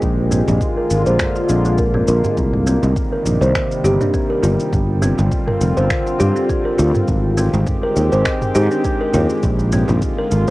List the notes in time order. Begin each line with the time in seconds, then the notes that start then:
Already playing: G#3
0.02 A#1 D3 A#3 F4, kick, shaker
0.31 C4, darbuka dum, shaker
0.48 A#1, mid tom, darbuka ka, darbuka tek, shaker
0.61 kick, shaker
0.77 A#4
0.90 G#1, darbuka ka, shaker
1.06 A#1 C5, darbuka tek, shaker
1.19 finger snap, kick, mid tom, shaker
1.36 darbuka ka, shaker
1.49 A#1 C4, darbuka tek, shaker
1.65 A#3, darbuka ka, shaker
1.78 A#4, kick, shaker
1.94 C4, mid tom
2.08 A#1 A#4, shaker
2.24 darbuka ka, darbuka dum, shaker
2.37 C2 C3 D#3 G3, kick, shaker
2.53 mid tom
2.67 C4, shaker
2.83 C2, darbuka ka, darbuka tek, shaker
2.96 kick, shaker
3.12 A#4
3.25 A#1, mid tom, darbuka ka, shaker
3.41 C2 C5, darbuka tek, shaker
3.55 finger snap, kick, shaker
3.71 shaker
3.84 G1 G4, darbuka ka, darbuka tek, shaker
4.01 D4, mid tom, shaker
4.14 C4, kick, shaker
4.30 A#4, darbuka ka
4.43 G1 F4, darbuka tek, shaker
4.60 shaker
4.73 G1 D3 C4 F4, kick, mid tom, shaker
5.01 C4, darbuka dum, shaker
5.18 G1, darbuka ka, darbuka tek, shaker
5.32 kick, shaker
5.48 A#4, mid tom
5.61 F1, darbuka ka, shaker
5.77 G1 C5, darbuka tek, shaker
5.90 finger snap, kick, shaker
6.06 darbuka ka, shaker
6.19 G2 G4, mid tom, darbuka tek, shaker
6.35 D4, darbuka ka, shaker
6.49 C4, kick, shaker
6.65 A#4
6.78 D2 F4, shaker
6.95 mid tom, darbuka dum, shaker
7.08 G#1 D#3 G#3 C4 G4, kick, shaker
7.37 C4, shaker
7.54 G#1, darbuka ka, darbuka tek, shaker
7.67 kick, mid tom, shaker
7.83 A#4
7.96 D#2, darbuka ka, shaker
8.12 G#1 C5, darbuka tek, shaker
8.25 finger snap, kick, shaker
8.42 mid tom, shaker
8.55 G#2 G4, darbuka ka, darbuka tek, shaker
8.71 D4, shaker
8.84 C4, kick, shaker
9.01 A#4, darbuka ka
9.14 D#2 F4, mid tom, darbuka tek, shaker
9.30 shaker
9.43 A#1 D3 A#3 F4, kick, shaker
9.59 shaker
9.72 C4, darbuka dum, shaker
9.88 A#1, mid tom, darbuka ka, darbuka tek, shaker
10.02 kick, shaker
10.18 A#4
10.31 G#1, darbuka ka, darbuka tek, shaker